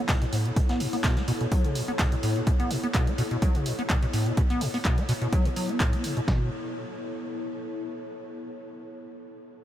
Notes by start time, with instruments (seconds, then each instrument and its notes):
Already playing: ambient pad B3 E4 A4 C#5
0.09 acid bass B2, kick, snare, clap, closed hi-hat
0.22 acid bass B2, snare, closed hi-hat
0.32 acid bass A2, closed hi-hat, open hi-hat
0.45 acid bass B2, closed hi-hat
0.56 acid bass B2, kick, closed hi-hat
0.69 acid bass B3, snare, closed hi-hat
0.80 acid bass B2, open hi-hat
0.93 acid bass B3, open hi-hat
1.04 acid bass B2, kick, snare, clap, closed hi-hat
1.17 acid bass A3, snare, closed hi-hat
1.27 acid bass B2, closed hi-hat, open hi-hat
1.41 acid bass B2, closed hi-hat
1.52 acid bass F#3, kick, closed hi-hat
1.64 acid bass C#3, closed hi-hat
1.75 acid bass B2, closed hi-hat, open hi-hat
1.88 acid bass B3, closed hi-hat
1.99 acid bass B2, kick, snare, clap, closed hi-hat
2.12 acid bass B2, closed hi-hat
2.23 acid bass A2, closed hi-hat, open hi-hat
2.36 acid bass B2, closed hi-hat
2.47 acid bass B2, kick, closed hi-hat
2.60 acid bass B3, closed hi-hat
2.71 acid bass B2, open hi-hat
2.83 acid bass B3, closed hi-hat
2.94 acid bass B2, kick, clap, closed hi-hat
3.07 acid bass A3, closed hi-hat
3.18 acid bass B2, open hi-hat
3.31 acid bass B2, closed hi-hat
3.42 acid bass F#3, kick, closed hi-hat
3.55 acid bass C#3, closed hi-hat
3.66 acid bass B2, open hi-hat
3.79 acid bass B3, closed hi-hat
3.90 acid bass B2, kick, clap, closed hi-hat
4.02 acid bass B2, closed hi-hat
4.13 acid bass A2, open hi-hat
4.26 acid bass B2, closed hi-hat
4.37 acid bass B2, kick, closed hi-hat
4.50 acid bass B3, closed hi-hat
4.61 acid bass B2, open hi-hat
4.74 acid bass B3, open hi-hat
4.85 acid bass B2, kick, clap, closed hi-hat
4.98 acid bass A3, closed hi-hat
5.09 acid bass B2, open hi-hat
5.22 acid bass B2, closed hi-hat
5.33 acid bass F#3, kick, closed hi-hat
5.45 acid bass C#3, closed hi-hat
5.56 acid bass F#3, open hi-hat
5.69 acid bass B3, closed hi-hat
5.80 acid bass A2, kick, clap, closed hi-hat
5.93 acid bass B3, closed hi-hat
6.04 acid bass C#3, open hi-hat
6.17 acid bass B2, closed hi-hat
6.28 acid bass B2, ambient pad B3, kick, snare
6.35 ambient pad E4
6.43 ambient pad A4
6.49 ambient pad C#5